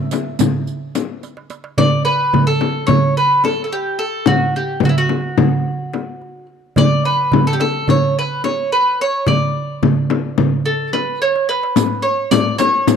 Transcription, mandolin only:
Already playing: E5
1.78 D5
2.05 B4
2.47 A4
2.87 C#5
3.17 B4
3.45 A4
3.64 A4
3.73 G4
3.99 A4
4.27 F#4
4.56 G4
4.85 F#4
4.89 E4
4.98 F#4
6.78 D5
7.05 B4
7.47 A4
7.53 G4
7.61 A4
7.90 C#5
8.19 B4
8.44 C#5
8.72 B4
9.01 C#5
9.28 D5
10.66 A4
10.93 B4
11.22 C#5
11.49 B4
12.02 C#5
12.31 D5
12.58 C#5

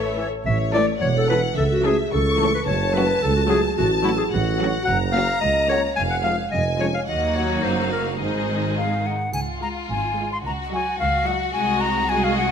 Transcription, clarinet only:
0.18 A4
0.46 E5
0.73 D5
1.01 C#5
1.17 A4
1.29 B4
1.57 A4
1.72 F#4
1.85 G#4
2.12 A4
2.54 B4
2.66 C#5
2.94 B4
3.22 A4
3.36 F#4
3.49 G#4
3.78 F#4
4.03 E4
4.17 G#4
4.30 F#4
4.85 F#5
5.12 F5
5.41 D#5
5.69 C#5
5.96 G#5
6.10 F#5
6.24 F5
6.51 D#5
6.80 C#5
6.94 F5
7.07 D#5
7.35 C#5
7.63 C5
7.92 A#4
8.21 C5

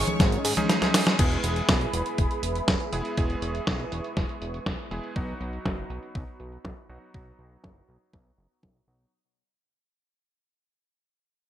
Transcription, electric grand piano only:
Already playing: G#3 C#4 D#4 G#4
0.57 G#3 C#4 D#4 G#4
1.19 G#3 B3 E4 G#4
2.93 G#3 B3 E4 G#4
3.17 G#3 B3 E4 G#4
4.91 G#3 B3 E4 G#4
5.16 F#3 B3 D#4 F#4
6.89 F#3 B3 D#4 F#4
7.14 F#3 B3 D#4 F#4
8.88 F#3 B3 D#4 F#4

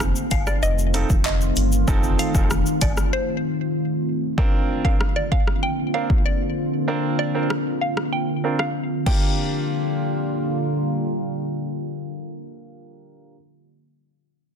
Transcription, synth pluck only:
0.31 F5
0.47 D5
0.63 D#5
1.25 D#5
2.19 F5
2.82 D5
3.13 C5
4.85 F5
5.16 D5
5.32 F5
5.63 G5
5.94 F5
6.26 D5
7.19 D5
7.81 F5
8.12 G5
8.59 F5
9.06 G5

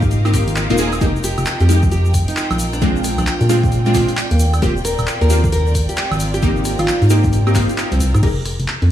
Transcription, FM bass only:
Already playing: G#2
0.48 G#1
0.70 D#1
1.01 F1
1.38 F1
1.61 F2
2.51 A#1
2.82 A#1
3.18 A#1
3.41 A#2
4.31 D#2
4.62 D#1
4.99 D#1
5.21 D#2
6.12 G#1
6.43 G#1
6.79 G#1
7.02 G#2
7.92 C2
8.01 C2
8.15 G#2
8.23 F1
8.60 F1
8.82 F2

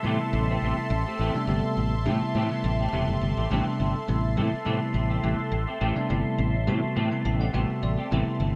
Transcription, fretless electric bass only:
0.04 A2
0.33 A1
0.62 A1
0.78 muted fretless electric bass stroke
0.90 A1
1.19 A1
1.47 G1
1.77 A1
2.06 A2
2.22 muted fretless electric bass stroke
2.35 A2
2.64 A1
2.93 E1
3.08 F#1
3.21 G1
3.37 A1
3.51 A1
3.80 G1
4.08 A1
4.37 A2
4.53 muted fretless electric bass stroke
4.66 A2
4.94 A1
5.23 A1
5.39 muted fretless electric bass stroke
5.52 A1
5.81 A1
5.97 muted fretless electric bass stroke
6.10 G1
6.38 A1
6.67 A2
6.83 muted fretless electric bass stroke
6.96 A2
7.25 A1
7.54 A1
7.70 muted fretless electric bass stroke
7.83 A1
8.12 A1
8.27 muted fretless electric bass stroke
8.40 G1

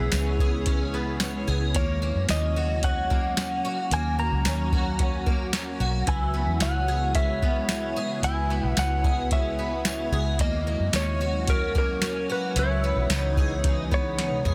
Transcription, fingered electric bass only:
0.00 B1
0.12 C#2
1.48 C#2
1.74 D#2
2.15 F#2
2.29 D#2
3.91 D#2
4.32 C#2
4.45 D#2
5.80 B1
6.07 C#2
6.47 E2
6.61 C#2
8.22 C#2
8.63 B1
8.77 C#2
10.12 C#2
10.39 D#2
10.79 F#2
10.93 D#2
12.56 C#2
12.96 B1
13.09 C#2
14.45 B1

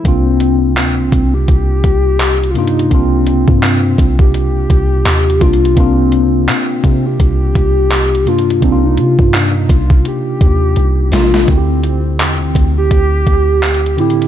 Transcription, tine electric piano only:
0.04 C3 A#3 D4
0.08 F4
2.54 C3 A#3 D4
2.59 F4
2.90 C3 A#3 D4
2.94 F4
5.40 C3 A#3 D4
5.44 F4
5.75 C3 A#3 D4
5.80 F4
8.26 C3 A#3 D4
8.30 F4
8.61 C3 A#3 D4
8.66 D#4
8.72 F4
11.11 C3 A#3 D4
11.15 F4
11.47 D3 C4 E4
11.51 F#4
11.58 G4
13.97 D3 C4 E4
14.01 G4

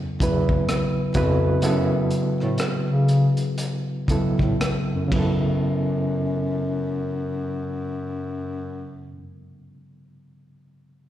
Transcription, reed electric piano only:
0.21 C#3 F#3 B3 E4 B4
1.15 C#3 B3 E4 F#4 B4
1.62 C#3 F#3 B3 E4 A4
4.09 C#3 F#3 B3 E4 A4
5.08 C#3 F#3
5.13 B3 E4
5.18 A4

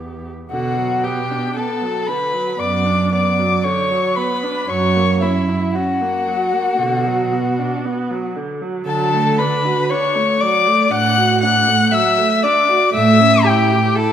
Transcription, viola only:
Already playing: B3
0.51 D3
0.78 F#3
1.04 B3
1.31 D4
1.57 B3
1.82 F#3
2.09 D3
2.34 F#3
2.59 B3
2.85 D4
3.12 B3
3.39 F#3
3.64 D3
3.91 F#3
4.17 B3
4.44 D4
4.71 F#3
4.96 A#3
5.23 C#4
5.49 E4
5.75 C#4
6.02 A#3
6.28 F#3
6.53 A#3
6.79 D3
7.06 F#3
7.32 B3
7.59 D4
7.85 B3
8.11 F#3
8.36 D3
8.62 F#3
8.88 F#3
9.14 A3
9.39 D4
9.65 F#4
9.91 D4
10.16 A3
10.42 F#3
10.68 A3
10.93 D4
11.17 F#4
11.43 D4
11.68 A3
11.92 F#3
12.18 A3
12.44 D4
12.69 F#4
12.94 A3
13.20 C#4
13.45 E4
13.71 G4
13.96 E4

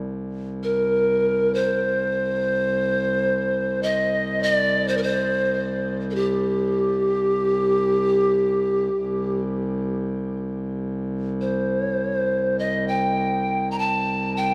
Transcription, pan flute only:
0.63 A#4
1.55 C5
3.83 D#5
4.43 D#5
4.54 D5
4.88 C5
4.97 A#4
5.03 C5
6.11 A4
6.15 G4
11.41 C5
12.59 D#5
12.88 G5
13.71 A#5
13.79 A5
14.37 G5

